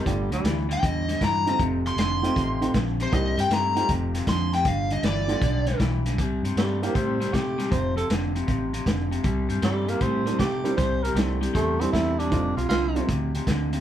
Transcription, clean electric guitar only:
X:1
M:4/4
L:1/8
Q:"Swing" 1/4=157
K:Cmix
V:1 name="Clean electric guitar" clef=bass
[G,,D,] [G,,D,] [G,,E,] [G,,D,] [G,,D,] [G,,D,] [G,,E,] [G,,D,] | [F,,C,] [F,,C,] [F,,D,] [F,,C,] [F,,C,] [F,,C,] [F,,D,] [F,,C,] | [C,G,] [C,G,] [C,A,] [C,G,] [F,,C,] [F,,C,] [F,,D,] [F,,C,] | [G,,D,] [G,,D,] [G,,E,] [G,,D,] [G,,D,] [G,,D,] [G,,E,] [G,,D,] |
[C,G,] [C,G,] [C,A,] [C,G,] [C,G,] [C,G,] [C,A,] [C,G,] | [F,,C,] [F,,C,] [F,,D,] [F,,C,] [F,,C,] [F,,C,] [F,,D,] [F,,C,] | [C,G,] [C,G,] [C,A,] [C,G,] [C,G,] [C,G,] [C,A,] [C,G,] | [C,G,] [C,G,] [C,A,] [C,G,] [C,G,] [C,G,] [C,A,] [C,G,] |
[F,,C,] [F,,C,] [F,,D,] [F,,C,] [F,,C,] [F,,C,] [F,,D,] [F,,C,] |]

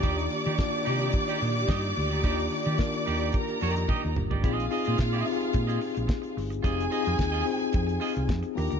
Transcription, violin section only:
X:1
M:4/4
L:1/8
Q:1/4=109
K:Fdor
V:1 name="Violin section"
[dd']8- | [dd']4 [Bb]3 z | [Ff]6- [Ff] z | [Aa]6 z [Bb] |]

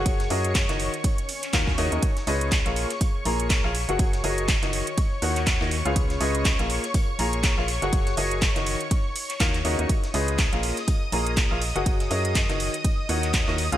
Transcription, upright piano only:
X:1
M:4/4
L:1/16
Q:"Swing 16ths" 1/4=122
K:F#
V:1 name="Upright piano"
[F,FGAcf]2 [F,FGAcd]2 z [D,DFAcd]2 z4 z [D,DFAce] z [C,DFAcd] [C,DFAcd] | z2 [C,EGBcd]2 z [A,EGAce]2 z3 [A,EGAca]3 [EGAce] z [F,FGAcf]- | [F,FGAcf]2 [F,FGAcd]2 z [D,DFAcd]2 z3 [D,DFAcf]3 [D,DFAcd] z [C,EGBce]- | [C,EGBce]2 [C,EGBcd]2 z [A,EGAce]2 z3 [A,EGAca]3 [EGAce] z [F,FGAcf]- |
[F,FGAcf]2 [F,FGAcd]2 z [D,DFAcd]2 z4 z [D,DFAce] z [C,DFAcd] [C,DFAcd] | z2 [C,EGBcd]2 z [A,EGAce]2 z3 [A,EGAca]3 [EGAce] z [F,FGAcf]- | [F,FGAcf]2 [F,FGAcd]2 z [D,DFAcd]2 z3 [D,DFAcf]3 [D,DFAcd] z [C,EGBce] |]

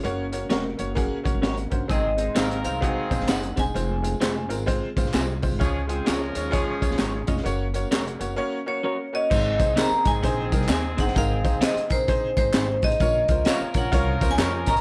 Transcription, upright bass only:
X:1
M:4/4
L:1/16
Q:"Swing" 1/4=130
K:Abmix
V:1 name="Upright bass" clef=bass
G,,,4 F,,,2 G,,,3 z G,,, A,,,3 =G,,,2 | A,,,4 A,,,2 C,,3 z B,,, A,,, G,,,2 _F,,,2 | F,,,4 F,,,2 A,,,3 z A,,, B,,, C,,3 A,,, | D,,4 D,,2 E,,3 z D,, B,,, A,,,2 F,,,2 |
G,,,4 F,,,2 G,,,2 z8 | A,,,2 C,,2 z2 A,,,2 B,,,2 C,,2 E,,2 =G,,,2 | A,,,2 C,,2 z2 B,,,4 A,,,2 A,,,2 =A,,,2 | B,,,2 D,,2 z2 B,,,2 C,,2 D,,2 F,,2 =A,,,2 |]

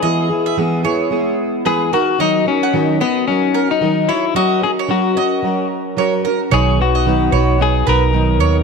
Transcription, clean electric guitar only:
X:1
M:4/4
L:1/16
Q:"Swing 16ths" 1/4=111
K:B
V:1 name="Clean electric guitar"
G6 z6 G2 F2 | D2 C4 B,2 C3 D3 E2 | F2 G2 F6 z6 | G2 F6 G2 A6 |]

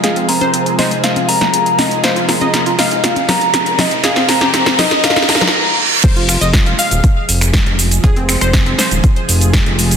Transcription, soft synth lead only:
X:1
M:4/4
L:1/8
Q:1/4=120
K:Fm
V:1 name="Soft synth lead"
f b2 e f b2 e | f b2 e f b2 e | f b2 e f b z2 | z8 |
z8 |]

